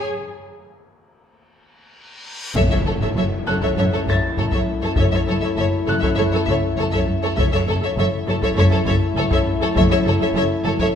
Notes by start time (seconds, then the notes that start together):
Already playing: G#6
0.06 reverse cymbal
2.54 F#1 F#2 A3 E4 A4 C#5 E5, taiko, impact
2.71 F#2 A4 C#5 E5
2.86 F#1 F#2 A4 C#5
3.00 F#2 A4 C#5 E5, taiko low-mid
3.16 F#1 F#2 F#3 A4 C#5 E5
3.47 F#1 F#2 F#3 A4 C#5 F#6
3.61 F#2 A4 C#5 E5, taiko
3.76 F#1 F#2 A4 C#5 E5, taiko low-mid
3.92 F#2 A4 C#5
4.07 F#1 F#2 A4 C#5 E5 A6, taiko
4.37 F#1 F#2 A4 C#5, taiko low-mid
4.51 F#2 A4 C#5 E5, taiko
4.68 F#2
4.82 F#2 A4 C#5
4.96 F#1 F#2 A4 C#5 E5, taiko
5.12 F#2 A4 C#5 E5
5.27 F#1 F#2 A4 C#5
5.41 F#2 A4 C#5 E5
5.57 F#1 F#2 F#3 A4 C#5 E5
5.86 F#1 F#2 F#3 A4 C#5 F#6
6.00 F#2 A4 C#5 E5, taiko
6.15 F#1 F#2 A4 C#5 E5
6.32 F#2 A4 C#5
6.45 F#1 F#2 A4 E5, taiko
6.50 C#5
6.77 F#1 F#2 A4 C#5
6.92 F#2 A4 C#5 E5, taiko
7.08 F#2
7.23 F#2 A4 C#5
7.36 F#1 F#2 A3 E4 A4 C#5 E5, taiko
7.52 F#2 A4 C#5 E5
7.67 F#1 F#2 A4 C#5
7.82 F#2 A4 C#5 E5
7.97 F#1 F#2 F#3 A4 C#5 E5
8.26 F#1 F#2 F#3 A4 C#5
8.41 F#2 A4 C#5 E5, taiko
8.56 F#1 F#2 A4 C#5
8.60 E5
8.70 F#2 A4
8.74 C#5
8.85 F#1 F#2 A4 C#5, taiko
8.89 E5
9.15 F#1 F#2 A4 C#5
9.29 F#2 A4 C#5, taiko
9.33 E5
9.46 F#2
9.60 F#2 A4 C#5
9.75 F#1 F#2 A4 C#5 E5, taiko
9.90 F#2 A4 C#5 E5
10.03 F#1 F#2 A4 C#5
10.08 A4
10.20 F#2 A4 C#5 E5
10.34 F#1 F#2 F#3 A4 C#5 E5
10.64 F#1 F#2 F#3 A4 C#5
10.79 F#2 A4 C#5 E5, taiko